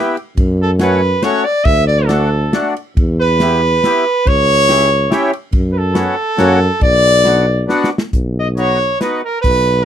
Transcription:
0.00 0.16 B3 medium
0.00 0.16 E4 medium
0.00 0.16 G4 medium
0.00 0.16 B4 medium
0.17 ride soft
0.37 1.21 F#2 medium
0.37 kick medium
0.37 ride medium
0.62 0.71 A4 medium
0.79 1.01 A3 medium
0.79 1.01 C#4 medium
0.79 1.01 F#4 medium
0.79 1.25 B4 loud
0.79 snare medium
0.79 ride medium
1.22 1.44 A3 medium
1.22 1.44 C#4 medium
1.22 1.44 F#4 medium
1.22 1.46 C#5 loud
1.22 snare medium
1.22 ride soft
1.44 1.66 D5 loud
1.65 2.50 D2 medium
1.65 1.87 E5 loud
1.65 kick medium
1.65 ride soft
1.87 2.07 D5 loud
2.06 2.29 A3 medium
2.06 2.29 D4 soft
2.06 2.30 F#4 medium
2.06 2.75 A4 medium
2.06 snare medium
2.06 ride soft
2.52 2.74 A3 medium
2.52 2.74 D4 medium
2.52 2.75 F#4 medium
2.52 snare medium
2.52 ride soft
2.76 ride soft
2.97 3.81 E2 medium
2.97 kick medium
2.97 ride soft
3.19 4.29 B4 loud
3.40 3.61 B3 medium
3.40 3.61 E4 soft
3.40 3.62 G4 medium
3.40 snare medium
3.40 ride soft
3.84 4.04 B3 medium
3.84 4.05 E4 medium
3.84 4.05 G4 medium
3.84 snare medium
3.84 ride soft
4.26 5.09 C#2 medium
4.26 5.34 C#5 loud
4.26 kick medium
4.26 ride soft
4.69 4.89 C#4 medium
4.69 4.89 E4 soft
4.69 4.89 G4 medium
4.69 snare medium
4.69 ride soft
5.10 5.31 C#4 medium
5.10 5.31 E4 medium
5.10 5.31 G4 loud
5.10 snare medium
5.10 ride soft
5.33 ride soft
5.52 6.09 F#2 medium
5.52 kick medium
5.52 ride soft
5.72 5.79 B4 medium
5.78 6.82 A4 loud
5.94 6.15 B3 medium
5.94 6.15 C#4 medium
5.94 6.15 F#4 medium
5.94 snare medium
5.94 ride soft
6.38 6.67 F#2 loud
6.38 6.59 A#3 medium
6.38 6.59 C#4 medium
6.38 6.59 F#4 medium
6.38 snare medium
6.38 ride soft
6.81 7.67 B1 medium
6.81 7.66 D5 loud
6.81 kick medium
6.81 ride soft
7.24 7.45 B3 medium
7.24 7.46 D4 soft
7.24 7.46 F#4 medium
7.24 snare medium
7.24 ride soft
7.68 7.89 B3 medium
7.68 7.90 D4 medium
7.68 7.90 F#4 loud
7.68 snare soft
7.84 snare medium
7.98 snare medium
8.13 8.98 B1 medium
8.13 kick medium
8.13 closed hi-hat soft
8.39 8.48 D#5 medium
8.57 8.78 B3 soft
8.57 8.78 D#4 soft
8.57 8.78 F#4 medium
8.57 8.98 C#5 loud
8.57 closed hi-hat soft
9.00 9.21 B3 medium
9.00 9.21 D#4 medium
9.00 9.22 F#4 medium
9.00 9.22 B4 medium
9.00 snare medium
9.00 closed hi-hat soft
9.25 9.41 A#4 medium
9.42 9.85 B1 medium
9.42 9.85 B4 loud
9.42 kick medium
9.42 closed hi-hat soft

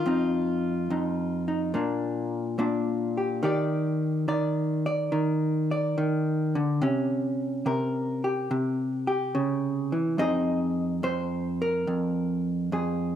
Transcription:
0.00 3.43 F4 medium
0.06 0.89 F2 medium
0.06 1.72 C4 soft
0.06 0.90 D#4 soft
0.90 1.75 F2 medium
0.90 1.47 D#4 soft
1.48 1.72 D#4 soft
1.74 2.57 A#2 medium
1.74 3.42 A#3 soft
1.74 2.58 D4 soft
2.59 3.43 A#2 medium
2.59 3.41 D4 soft
3.17 3.44 G4 soft
3.43 4.27 D#3 medium
3.43 6.78 G4 medium
3.43 4.27 D5 medium
4.28 5.11 D#3 medium
4.28 4.85 D5 medium
4.86 5.70 D5 medium
5.12 5.97 D#3 medium
5.71 6.79 D5 medium
5.98 6.54 D#3 medium
6.55 6.82 D3 medium
6.82 7.65 C3 medium
6.82 10.17 C#4 medium
7.66 8.50 C3 medium
7.66 9.07 A#4 medium
8.24 9.06 G4 medium
8.51 10.16 C3 medium
9.07 10.16 G4 medium
9.35 9.92 C#3 medium
9.92 10.18 E3 medium
10.18 11.02 F2 medium
10.18 13.15 C4 soft
10.18 13.15 D#4 soft
10.18 11.61 G#4 soft
10.18 11.03 D#5 medium
11.03 11.86 F2 medium
11.03 12.45 C5 medium
11.62 12.73 A#4 medium
11.87 12.71 F2 medium
12.72 13.15 F2 medium
12.72 13.15 G#4 soft

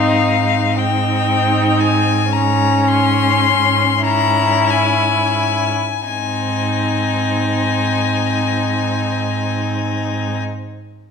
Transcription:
0.00 5.74 G#2 soft
0.00 0.78 C4 soft
0.00 0.77 D#4 soft
0.00 0.80 F5 medium
0.76 2.33 C4 soft
0.76 2.31 D#4 soft
0.76 1.82 G5 medium
1.80 2.35 G#5 medium
2.31 4.00 C#4 soft
2.31 4.03 C#4 soft
2.31 2.89 A#5 medium
2.88 4.04 C6 medium
4.03 5.74 C#4 soft
4.03 5.74 E4 medium
4.03 4.72 A#5 medium
4.70 6.07 G#5 medium
6.07 10.39 G#2 soft
6.07 10.38 C4 soft
6.07 10.37 D#4 soft
6.07 10.38 G#5 soft

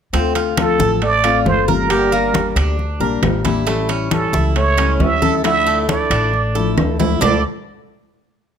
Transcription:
0.13 0.76 D2 medium
0.13 0.56 D3 medium
0.13 0.57 A3 medium
0.13 0.35 C4 medium
0.13 0.57 C4 medium
0.13 0.57 F4 medium
0.13 high conga soft
0.13 high timbale medium
0.35 0.78 F4 medium
0.35 high conga soft
0.35 high timbale medium
0.57 1.00 D3 soft
0.57 0.99 F3 medium
0.57 1.01 A3 medium
0.57 1.01 C4 medium
0.57 1.01 F4 medium
0.57 1.00 A4 medium
0.57 high conga medium
0.57 high timbale medium
0.57 low timbale medium
0.57 claves medium
0.79 1.42 A1 medium
0.79 1.23 A4 medium
0.79 high conga medium
1.02 1.43 A3 medium
1.02 1.49 D5 loud
1.02 muted steel-string acoustic guitar stroke medium
1.02 high conga soft
1.02 high timbale medium
1.24 1.45 A3 soft
1.24 1.45 C4 medium
1.24 1.45 F4 medium
1.24 1.67 F4 medium
1.24 high conga soft
1.24 high timbale medium
1.24 claves medium
1.45 2.50 G1 medium
1.45 1.67 D3 soft
1.45 1.68 A3 soft
1.45 1.68 C4 medium
1.45 1.67 F4 soft
1.45 1.71 C5 medium
1.45 high conga medium
1.45 low timbale medium
1.68 2.57 G3 medium
1.68 1.90 A3 soft
1.68 1.90 C4 medium
1.68 1.89 F4 medium
1.68 1.90 A#4 medium
1.68 2.57 A#4 medium
1.68 high conga medium
1.90 2.33 D3 medium
1.90 2.33 G3 medium
1.90 2.34 A#3 medium
1.90 2.34 D4 medium
1.90 2.12 G4 medium
1.90 2.34 G4 medium
1.90 high timbale medium
1.90 claves medium
2.12 2.55 A#3 medium
2.12 high conga soft
2.34 2.78 G3 soft
2.34 2.78 A#3 medium
2.34 2.78 D4 medium
2.34 2.78 G4 medium
2.34 high conga medium
2.34 high timbale medium
2.34 low timbale medium
2.56 2.97 D2 loud
2.56 2.99 D4 medium
2.56 high conga soft
2.56 high timbale medium
2.56 claves medium
2.79 muted steel-string acoustic guitar stroke medium
2.79 high conga soft
3.00 3.21 A#1 medium
3.00 3.21 G3 medium
3.00 3.21 A#3 medium
3.00 3.22 D4 medium
3.00 3.22 G4 medium
3.00 3.44 A#4 medium
3.00 high conga soft
3.22 4.27 A1 medium
3.22 3.44 G3 soft
3.22 3.44 A#3 medium
3.22 3.44 D4 soft
3.22 3.43 G4 medium
3.22 high conga medium
3.22 high timbale medium
3.22 low timbale medium
3.22 claves medium
3.44 3.66 G3 medium
3.44 3.66 A#3 medium
3.44 3.66 D4 medium
3.44 3.66 E4 medium
3.44 3.66 G4 medium
3.44 high conga medium
3.44 high timbale medium
3.66 4.09 E3 medium
3.66 4.10 G3 medium
3.66 3.88 A3 medium
3.66 4.11 C#4 medium
3.66 4.11 E4 medium
3.66 high conga soft
3.66 high timbale medium
3.89 4.32 C#4 medium
3.89 high conga soft
3.89 high timbale medium
4.11 4.54 E3 medium
4.11 4.55 G3 medium
4.11 4.55 C#4 medium
4.11 4.55 E4 medium
4.11 4.53 A4 medium
4.11 high conga medium
4.11 high timbale medium
4.11 low timbale soft
4.11 claves medium
4.33 4.96 C#2 medium
4.33 4.76 E4 medium
4.33 high conga medium
4.55 5.00 A3 medium
4.55 5.03 C#5 loud
4.55 muted steel-string acoustic guitar stroke medium
4.55 high conga soft
4.55 high timbale medium
4.77 4.99 G3 medium
4.77 5.21 C#4 medium
4.77 4.99 C#4 medium
4.77 4.99 E4 medium
4.77 high conga soft
4.77 high timbale medium
4.77 claves medium
4.99 6.04 D2 medium
4.99 5.21 E3 medium
4.99 5.21 G3 soft
4.99 5.21 C#4 medium
4.99 5.20 E4 medium
4.99 5.45 E5 loud
4.99 high conga medium
4.99 low timbale medium
5.21 5.44 G3 medium
5.21 5.43 C#4 medium
5.21 5.43 E4 medium
5.21 5.44 A4 medium
5.21 high conga medium
5.43 5.87 D3 medium
5.43 5.87 F3 medium
5.43 5.88 A3 medium
5.43 5.88 D4 medium
5.43 5.66 E4 medium
5.43 5.88 E4 medium
5.43 5.86 E5 loud
5.43 high conga soft
5.43 high timbale medium
5.43 claves medium
5.67 6.10 A3 medium
5.67 high conga soft
5.88 6.32 F3 medium
5.88 6.32 A3 soft
5.88 6.32 D4 medium
5.88 6.32 E4 medium
5.88 6.74 D5 medium
5.88 high conga loud
5.88 high timbale medium
5.88 low timbale medium
6.10 6.73 A1 medium
6.10 6.54 D4 medium
6.10 high conga soft
6.10 high timbale medium
6.10 claves medium
6.33 muted steel-string acoustic guitar stroke medium
6.33 high conga soft
6.55 6.76 F3 medium
6.55 6.77 A3 medium
6.55 6.77 D4 medium
6.55 6.77 E4 medium
6.55 6.98 A4 medium
6.55 high conga soft
6.77 7.17 D2 medium
6.77 6.99 F3 soft
6.77 6.99 A3 soft
6.77 6.99 D4 soft
6.77 6.98 E4 medium
6.77 high conga medium
6.77 high timbale medium
6.77 claves medium
6.99 7.21 F3 medium
6.99 7.21 A3 medium
6.99 7.21 D4 medium
6.99 7.21 E4 medium
6.99 high conga medium
6.99 low timbale medium
7.21 7.43 D2 medium
7.21 7.40 D3 medium
7.21 7.40 F3 medium
7.21 7.40 A3 medium
7.21 7.42 D4 medium
7.21 7.40 D4 medium
7.21 7.40 E4 medium
7.21 7.42 A4 medium
7.21 7.43 D5 medium
7.21 low conga medium
7.21 low timbale loud
7.21 claves medium

